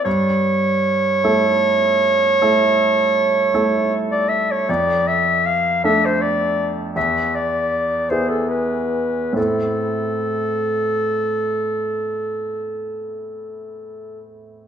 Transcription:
<<
  \new Staff \with { instrumentName = "Clarinet" } { \time 12/8 \key a \minor \tempo 4. = 51 cis''1~ cis''4~ cis''16 d''16 e''16 cis''16 | d''8 e''8 f''8 e''16 c''16 d''8. r16 e''8 d''4 c''16 a'16 b'4 | a'1~ a'4. r8 | }
  \new Staff \with { instrumentName = "Grand piano" } { \time 12/8 \key a \minor g,4. <a e' a'>4. <a e' a'>4. <a e' a'>4. | f,4. <a d' a'>4. e,4. <b e' gis'>4. | <a, c' e' a'>1. | }
>>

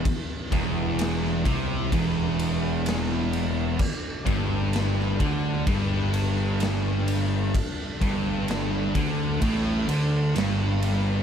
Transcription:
<<
  \new Staff \with { instrumentName = "String machine" } { \time 4/4 \key g \major \tempo 4 = 64 <e b e'>1 | <g d' a'>1~ | <g d' a'>1 | }
  \new Staff \with { instrumentName = "Distorted electric guitar" } { \clef bass \time 4/4 \key g \major r8 e,4 c8 e,2 | r8 g,4 d8 g,2 | r8 g,4 d8 a,8 d8 g,4 | }
  \new Staff \with { instrumentName = "Distorted electric guitar" } { \clef bass \time 4/4 \key g \major r8 e,4 c8 e,2 | r8 g,4 d8 g,2 | r8 g,4 d8 a,8 d8 g,4 | }
  \new Staff \with { instrumentName = "Distorted electric guitar" } { \clef bass \time 4/4 \key g \major r8 e,4 c8 e,2 | r8 g,4 d8 g,2 | r8 g,4 d8 a,8 d8 g,4 | }
  \new Staff \with { instrumentName = "Fingered electric bass" } { \clef bass \time 4/4 \key g \major r8 e,,4 c,8 e,,2 | r8 g,,4 d,8 g,,2 | r8 g,,4 d,8 a,,8 d,8 g,,4 | }
  \new DrumStaff \with { instrumentName = "Drums" } \drummode { \time 4/4 <bd cymr>8 <bd cymr>8 <cymr sn>16 sn16 <bd cymr>8 <bd cymr>8 cymr8 <cymr sn>8 cymr8 | <cymc bd>8 <bd cymr>8 <cymr sn>16 sn16 <bd cymr>8 <bd cymr>8 cymr8 <cymr sn>8 cymr8 | <bd cymr>8 <bd cymr>8 <cymr sn>8 <bd cymr>8 <bd cymr>8 cymr8 <cymr sn>8 cymr8 | }
>>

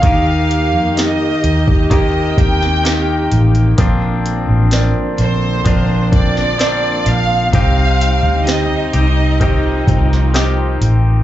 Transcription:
<<
  \new Staff \with { instrumentName = "Violin section" } { \time 4/4 \key bes \major \tempo 4 = 64 f''4 ees''4 ees''8 g''4 r8 | r4. c''4 d''4 f''8 | f''4 ees''8 ees''4 r4. | }
  \new Staff \with { instrumentName = "Grand piano" } { \time 4/4 \key bes \major ees4 <ees' g' bes'>4 <ees' g' bes'>4 <ees' g' bes'>4 | bes4 <bes' c'' d''>4 <bes' c'' d''>4 <bes' c'' d''>4 | c'4 <g' c'' ees''>4 <g' c'' ees''>4 <g' c'' ees''>4 | }
  \new Staff \with { instrumentName = "Clean electric guitar" } { \time 4/4 \key bes \major <ees bes ees' g'>2 <ees bes ees' g'>4 <ees bes ees' g'>4 | <f c' d' f'>2 <f c' d' f'>4 <f c' d' f'>4 | <c c' ees' g'>4. <c' ees' g'>8 <ees c' ees' g'>4 <ees c' ees' g'>4 | }
  \new Staff \with { instrumentName = "String section" } { \clef bass \time 4/4 \key bes \major << { <ees g'>1 | d1 | <c ees'>1 | } \\ { bes2 c'2 | bes1 | g2 f2 | } >> }
  \new Staff \with { instrumentName = "Fingered electric bass" } { \clef bass \time 4/4 \key bes \major ees,8. f,8 r16 ees,4 ees,4 a,,8 | bes,,8. a,,8 r16 bes,,8 bes,,4. bes,,8 | c,8. d,8 r16 c,4 c,4 a,,8 | }
  \new DrumStaff \with { instrumentName = "Drums" } \drummode { \time 4/4 <hh bd>8 hh8 <hh sn>8 hh16 bd16 <hh bd>8 <hh bd>16 sn16 <hh sn>8 hh16 hh16 | <hh bd>8 hh8 <hh sn>8 hh8 <hh bd>8 <hh bd>16 sn16 <hh sn>8 hh8 | <hh bd>8 hh8 <hh sn>8 hh8 <hh bd>8 <hh bd>16 sn16 <hh sn>8 hh8 | }
>>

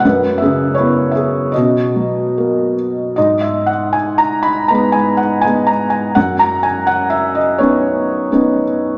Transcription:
<<
  \new Staff \with { instrumentName = "Felt piano" } { \time 4/4 \key b \major \tempo 4 = 81 <b' fis''>8 <gis' e''>8 <e' cis''>8 <gis' e''>8 <fis' dis''>4. r8 | \tuplet 3/2 { dis''8 e''8 fis''8 gis''8 ais''8 b''8 ais''8 gis''8 fis''8 gis''8 ais''8 gis''8 } | \tuplet 3/2 { fis''8 ais''8 gis''8 fis''8 e''8 dis''8 } cis''4. r8 | }
  \new Staff \with { instrumentName = "Felt piano" } { \time 4/4 \key b \major fis,8 cis8 b4 b,8 fis8 ais4 | gis,2 <gis b dis'>4 <gis b dis'>4 | fis,2 <b cis' dis'>4 <b cis' dis'>4 | }
>>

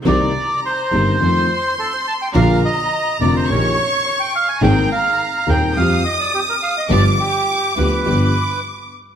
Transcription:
<<
  \new Staff \with { instrumentName = "Violin section" } { \time 4/4 \key c \minor \tempo 4 = 105 bes''2 c'''2 | bes''2 des'''2 | bes''2 ees'''2 | d'''2 d'''4. r8 | }
  \new Staff \with { instrumentName = "Bandoneon" } { \time 4/4 \key c \minor d''4 c''2 a'16 c''16 a''16 g''16 | f''8 ees''4 d''16 c''16 des''4 des''16 g''16 f''16 aes''16 | g''8 f''4 g''8 f''8 ees''16 d''16 g'16 bes'16 f''16 ees''16 | d''8 g'4 b'4. r4 | }
  \new Staff \with { instrumentName = "String section" } { \time 4/4 \key c \minor <c' ees' bes'>8 r4 <c' ees' bes'>8 <ees' f' a'>8 r4. | <d' f' bes'>8 r4 <d' f' bes'>8 <des' ees' g'>8 r4. | <bes c' aes'>8 r4 <bes c' aes'>8 <c' f' g'>8 r4. | <b f' g'>8 r4 <b f' g'>8 <b f' g'>8 r4. | }
  \new Staff \with { instrumentName = "Grand piano" } { \clef bass \time 4/4 \key c \minor <c, c ees bes c' g'>8 r4 <g,, g, ees bes c' g'>8 <f, ees f a c' f'>8 r4. | <bes,, bes, d f bes f'>8 r4 <f,, f, d f bes f'>8 <bes,, bes, ees bes des' g'>8 r4. | <aes,, aes, ees bes c' aes'>8 r4 <ees,, ees, ees bes c' aes'>8 <f, f g c' g'>8 r4. | <g,, g, f b d' g'>8 r4 <d, d f b d' g'>8 <g,, g, f b d' g'>8 r4. | }
  \new Staff \with { instrumentName = "Double bass" } { \clef bass \time 4/4 \key c \minor c,8 r4 g,,8 f,8 r4. | bes,,8 r4 f,,8 bes,,8 r4. | aes,,8 r4 ees,8 f,8 r4. | g,,8 r4 d,8 g,,8 r4. | }
>>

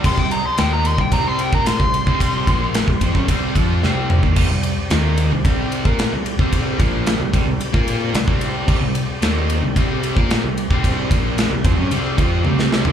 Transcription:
<<
  \new Staff \with { instrumentName = "Lead electric guitar" } { \time 4/4 \key c \minor \tempo 4 = 111 c'''16 g''16 bes''16 c'''16 g''16 bes''16 c'''16 g''16 bes''16 c'''16 g''16 bes''16 c'''4~ | c'''2 r2 | r1 | r1 |
r1 | r1 | }
  \new Staff \with { instrumentName = "Tonewheel organ" } { \time 4/4 \key c \minor <c' g' d''>1~ | <c' g' d''>1 | <c' g' d''>1~ | <c' g' d''>1~ |
<c' g' d''>1~ | <c' g' d''>1 | }
  \new Staff \with { instrumentName = "Distorted electric guitar" } { \clef bass \time 4/4 \key c \minor <c g>16 <c g>8 r16 <ees bes ees'>8. <c g>16 <c g c'>8. <bes f' bes'>8 <c g>8 <c g c'>16~ | <c g c'>8 <bes, f bes>8. <c g>16 <f c'>16 <fis des'>16 <c g c'>8 <f c' f'>8 <c g c'>8. <ees bes>16 | <c g>16 <c g>8 r16 <ees bes ees'>8. <c g>16 <c g c'>8. <bes f' bes'>8 <c g>8 <c g c'>16~ | <c g c'>8 <bes, f bes>8. <c g>16 <c g>16 <c g>16 r16 <bes f' bes'>8. <c g>16 <c g c'>8. |
<c g>16 <c g>8 r16 <ees bes ees'>8. <c g>16 <c g c'>8. <bes f' bes'>8 <c g>8 <c g c'>16~ | <c g c'>8 <bes, f bes>8. <c g>16 <f c'>16 <fis des'>16 <c g c'>8 <f c' f'>8 <c g c'>8. <ees bes>16 | }
  \new Staff \with { instrumentName = "Overdriven electric guitar" } { \clef bass \time 4/4 \key c \minor <c g>16 <c g>8 r16 <ees bes ees'>8. <c g>16 <c g c'>8. <bes f' bes'>8 <c g>8 <c g c'>16~ | <c g c'>8 <bes, f bes>8. <c g>16 <f c'>16 <fis des'>16 <c g c'>8 <f c' f'>8 <c g c'>8. <ees bes>16 | <c g>16 <c g>8 r16 <ees bes ees'>8. <c g>16 <c g c'>8. <bes f' bes'>8 <c g>8 <c g c'>16~ | <c g c'>8 <bes, f bes>8. <c g>16 <c g>16 <c g>16 r16 <bes f' bes'>8. <c g>16 <c g c'>8. |
<c g>16 <c g>8 r16 <ees bes ees'>8. <c g>16 <c g c'>8. <bes f' bes'>8 <c g>8 <c g c'>16~ | <c g c'>8 <bes, f bes>8. <c g>16 <f c'>16 <fis des'>16 <c g c'>8 <f c' f'>8 <c g c'>8. <ees bes>16 | }
  \new Staff \with { instrumentName = "Fingered electric bass" } { \clef bass \time 4/4 \key c \minor c,16 c,8 r16 ees,8. c,16 c,8. bes,8 c,8 c,16~ | c,8 bes,,8. c,16 f,16 fis,16 c,8 f,8 c,8. ees,16 | c,16 c,8 r16 ees,8. c,16 c,8. bes,8 c,8 c,16~ | c,8 bes,,8. c,16 c,16 c,16 r16 bes,8. c,16 c,8. |
c,16 c,8 r16 ees,8. c,16 c,8. bes,8 c,8 c,16~ | c,8 bes,,8. c,16 f,16 fis,16 c,8 f,8 c,8. ees,16 | }
  \new DrumStaff \with { instrumentName = "Drums" } \drummode { \time 4/4 <cymc bd>16 bd16 cymr8 <cymr sn>8 cymr16 bd16 <bd cymr>8 cymr16 bd16 <cymr sn>16 bd16 cymr16 bd16 | <bd cymr>8 <bd cymr>8 <cymr sn>16 bd16 <bd cymr>16 bd16 <bd cymr>8 <bd cymr>8 sn8 toml16 bd16 | <cymc bd>8 cymr8 <cymr sn>8 cymr8 <bd cymr>8 cymr16 bd16 <cymr sn>8 cymr16 bd16 | <bd cymr>8 <bd cymr>8 <cymr sn>8 <bd cymr>8 cymr16 bd16 cymr8 <cymr sn>16 bd16 cymr8 |
<cymc bd>8 cymr8 <cymr sn>8 cymr8 <bd cymr>8 cymr16 bd16 <cymr sn>8 cymr16 bd16 | <bd cymr>8 <bd cymr>8 <cymr sn>8 <bd cymr>8 cymr8 <bd cymr>8 tommh16 sn16 sn16 tomfh16 | }
>>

